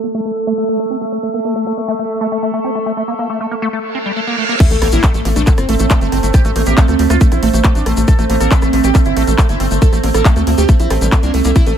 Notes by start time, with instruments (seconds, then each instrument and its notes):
Already playing: ambient pad A3 A4 E5 E6
0.04 acid bass A#3
0.14 acid bass A3
0.25 acid bass A3
0.47 acid bass A3
0.58 acid bass A3
0.69 acid bass A3
0.80 acid bass A3
0.91 acid bass C4
1.01 acid bass A3
1.12 acid bass A3
1.23 acid bass A3
1.34 acid bass A#3
1.45 acid bass A#3
1.56 acid bass A3
1.67 acid bass A3
1.77 acid bass A#3
1.88 acid bass A3
1.99 acid bass A3
2.21 acid bass A3
2.32 acid bass A3
2.43 acid bass A3
2.54 acid bass A3
2.64 acid bass C4
2.75 acid bass A3
2.86 acid bass A3
2.97 acid bass A3
3.08 acid bass A#3
3.19 acid bass A#3
3.30 acid bass A3
3.40 acid bass A3
3.51 acid bass A#3
3.62 acid bass A3
3.73 acid bass A3, reverse cymbal
3.95 acid bass C4
4.06 acid bass G3
4.17 acid bass A3
4.27 acid bass A#3
4.38 acid bass A3
4.49 acid bass A#3
4.60 acid bass A3, ambient pad C4 C5, analog synth lead E4, kick, cross-stick, closed hi-hat, crash, sub drop, shaker
4.71 analog synth bass A1, acid bass A3, analog synth lead A3, closed hi-hat, shaker
4.82 analog synth bass A1, analog synth lead A3, acid bass A#3, wobble bass C4, cross-stick, open hi-hat
4.92 analog synth bass A1, acid bass A#3, wobble bass C4, analog synth lead E4, closed hi-hat, shaker
5.03 acid bass A3, analog synth lead A3, kick, cross-stick, clap, closed hi-hat, shaker
5.14 analog synth bass A1, acid bass A3, analog synth lead A3, closed hi-hat, shaker
5.25 analog synth bass A1, analog synth lead A3, acid bass A#3, open hi-hat
5.36 analog synth bass A1, acid bass A3, analog synth lead D4, cross-stick, closed hi-hat, shaker
5.47 acid bass A3, analog synth lead A3, kick, clap, closed hi-hat, shaker
5.58 analog synth bass G1, analog synth lead C4, cross-stick, closed hi-hat, shaker
5.69 analog synth bass A1, acid bass A3, analog synth lead A3, open hi-hat
5.79 analog synth bass A1, analog synth lead A3, acid bass A3, wobble bass C4, cross-stick, closed hi-hat, shaker
5.90 acid bass A3, analog synth lead A3, kick, clap, closed hi-hat, shaker
6.01 analog synth bass G1, acid bass A3, analog synth lead A3, closed hi-hat, shaker
6.12 analog synth bass G1, analog synth lead A3, acid bass C4, cross-stick, open hi-hat
6.23 analog synth bass G1, acid bass A3, analog synth lead A3, closed hi-hat, shaker
6.34 acid bass A3, analog synth lead G4, kick, cross-stick, closed hi-hat, shaker
6.45 analog synth bass A1, acid bass A3, analog synth lead A3, closed hi-hat, shaker
6.56 analog synth bass A1, wobble bass A3, analog synth lead A3, acid bass A#3, cross-stick, open hi-hat
6.66 analog synth bass A1, wobble bass A3, acid bass A#3, analog synth lead G4, closed hi-hat, shaker
6.77 acid bass A3, analog synth lead A3, kick, clap, closed hi-hat, shaker
6.88 analog synth bass D2, acid bass A3, analog synth lead A3, cross-stick, closed hi-hat, shaker
6.99 analog synth bass D2, analog synth lead A3, acid bass A#3, open hi-hat
7.10 analog synth bass D2, acid bass A3, analog synth lead F4, cross-stick, closed hi-hat, shaker
7.21 acid bass A3, analog synth lead A3, kick, closed hi-hat, shaker
7.32 analog synth bass A#1, analog synth lead E4, cross-stick, closed hi-hat, shaker
7.43 analog synth bass A1, acid bass A3, analog synth lead A3, open hi-hat
7.54 analog synth bass A1, acid bass A3, analog synth lead A3, closed hi-hat, shaker
7.64 analog synth lead A3, acid bass A3, kick, cross-stick, clap, closed hi-hat, shaker
7.75 analog synth bass A1, acid bass A3, analog synth lead D4, closed hi-hat, shaker
7.86 analog synth bass A1, analog synth lead A3, acid bass C4, cross-stick, open hi-hat
7.97 analog synth bass A1, acid bass A3, analog synth lead A3, closed hi-hat, shaker
8.08 acid bass A3, analog synth lead A4, kick, cross-stick, closed hi-hat, shaker
8.19 analog synth bass A1, acid bass A3, analog synth lead A3, closed hi-hat, shaker
8.30 analog synth bass A1, analog synth lead A3, acid bass A#3, open hi-hat
8.40 analog synth bass A1, acid bass A#3, analog synth lead A4, cross-stick, closed hi-hat, shaker
8.51 analog synth lead A3, kick, clap, closed hi-hat, shaker
8.62 analog synth bass A1, acid bass A3, analog synth lead A3, cross-stick, closed hi-hat, shaker
8.73 analog synth bass A1, analog synth lead A3, acid bass A#3, open hi-hat
8.84 analog synth bass A1, acid bass A3, analog synth lead G4, cross-stick, closed hi-hat, shaker
8.95 acid bass A3, analog synth lead A3, kick, clap, closed hi-hat, shaker
9.05 analog synth bass G1, analog synth lead E4, closed hi-hat, shaker
9.17 analog synth bass A1, acid bass A3, analog synth lead A3, cross-stick, open hi-hat
9.27 analog synth bass A1, acid bass A3, analog synth lead A3, closed hi-hat, shaker
9.38 acid bass A3, analog synth lead A3, kick, cross-stick, clap, closed hi-hat, shaker
9.49 analog synth bass G1, acid bass A3, analog synth lead E4, closed hi-hat, shaker
9.60 analog synth bass G1, analog synth lead A3, acid bass C4, cross-stick, open hi-hat
9.71 analog synth bass G1, acid bass A3, analog synth lead A3, closed hi-hat, shaker
9.82 acid bass A3, analog synth lead A4, kick, closed hi-hat, shaker
9.93 analog synth bass A1, analog synth lead A3, acid bass A3, cross-stick, closed hi-hat, shaker
10.04 analog synth bass A1, analog synth lead A3, acid bass A#3, open hi-hat
10.14 analog synth bass A1, acid bass A#3, analog synth lead A4, cross-stick, closed hi-hat, shaker
10.25 analog synth lead A3, acid bass A3, kick, clap, closed hi-hat, shaker
10.36 analog synth bass D2, acid bass A3, analog synth lead A3, cross-stick, closed hi-hat, shaker
10.47 analog synth bass D2, analog synth lead A3, acid bass A#3, open hi-hat
10.58 analog synth bass D2, acid bass A3, analog synth lead G4, closed hi-hat, shaker
10.69 acid bass A3, analog synth lead A3, kick, cross-stick, closed hi-hat, shaker
10.80 analog synth bass A#1, analog synth lead E4, closed hi-hat, shaker
10.90 analog synth bass A1, analog synth lead A3, acid bass C4, cross-stick, open hi-hat
11.01 analog synth bass A1, acid bass G3, analog synth lead A3, closed hi-hat, shaker
11.12 analog synth lead A3, acid bass A3, kick, cross-stick, clap, closed hi-hat, shaker
11.23 analog synth bass C2, acid bass A#3, analog synth lead D4, closed hi-hat, shaker
11.34 analog synth bass C2, analog synth lead A3, acid bass A3, open hi-hat
11.44 analog synth bass C2, analog synth lead A3, acid bass A#3, cross-stick, closed hi-hat, shaker
11.56 acid bass A3, analog synth lead E4, ambient pad E5, kick, cross-stick, closed hi-hat, ride, shaker
11.66 analog synth bass A1, analog synth lead A3, acid bass A3, closed hi-hat, shaker